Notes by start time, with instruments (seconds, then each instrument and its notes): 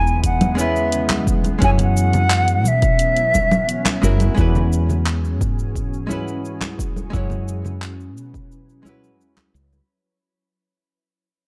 Already playing: fretless electric bass E2, ambient pad C#3 E3 G#3 B3, hollow-body jazz guitar G#3 C#4 D#4 E4 B4, flute G#5
0.07 shaker
0.24 flute F#5, kick, closed hi-hat, shaker
0.41 closed hi-hat, low conga, shaker
0.55 hollow-body jazz guitar G#3 B3 C#4, shaker
0.60 hollow-body jazz guitar E4 B4, flute E5
0.76 shaker
0.92 closed hi-hat, shaker
1.10 clap, closed hi-hat, high conga, shaker
1.27 kick, shaker
1.44 closed hi-hat, high conga, shaker
1.59 fretless electric bass F#2, ambient pad F#3 B3 C#4, hollow-body jazz guitar G#3 C#4 E4, kick, closed hi-hat, shaker
1.63 hollow-body jazz guitar F#4 C#5, flute G#5
1.78 flute F#5, closed hi-hat, low conga, shaker
1.97 shaker
2.13 closed hi-hat, low conga, shaker
2.30 clap, closed hi-hat, shaker
2.48 closed hi-hat, shaker
2.64 fretless electric bass B2, flute E5, high conga, shaker
2.82 kick, closed hi-hat, shaker
2.99 closed hi-hat, shaker
3.17 closed hi-hat, shaker
3.34 kick, high conga, shaker
3.51 low conga, shaker
3.69 closed hi-hat, shaker
3.86 clap, closed hi-hat, high conga, shaker
4.02 fretless electric bass F#1, hollow-body jazz guitar G#3 C#4 E4 F#4 A#4, shaker
4.20 closed hi-hat, high conga, shaker
4.34 fretless electric bass E2, ambient pad E3 C#4 F#4 G#4, hollow-body jazz guitar G#3 C#4 E4, kick, shaker
4.39 hollow-body jazz guitar F#4 B4
4.55 low conga, shaker
4.73 shaker
4.89 low conga, shaker
5.06 clap, shaker
5.25 shaker
5.41 fretless electric bass G#2, kick, shaker
5.59 shaker
5.76 kick, shaker
5.94 shaker
6.07 hollow-body jazz guitar G#3 C#4 E4, high conga, shaker
6.11 hollow-body jazz guitar F#4 B4
6.28 shaker
6.45 shaker
6.61 clap, high conga, shaker
6.79 kick, shaker
6.96 high conga, shaker
7.10 fretless electric bass F#2, ambient pad F#3 C#4 E4 B4, hollow-body jazz guitar G#3 C#4 E4, kick, shaker
7.15 hollow-body jazz guitar F#4 C#5
7.30 low conga, shaker
7.48 shaker
7.65 low conga, shaker
7.82 clap, shaker
8.00 shaker
8.17 fretless electric bass B2, shaker
8.34 kick, shaker
8.52 shaker
8.69 shaker
8.83 hollow-body jazz guitar G#3 C#4 E4, high conga, shaker
8.87 hollow-body jazz guitar F#4 B4
9.04 shaker
9.20 fretless electric bass E2, shaker
9.37 clap, high conga, shaker
9.54 fretless electric bass C#2, shaker
9.73 high conga, shaker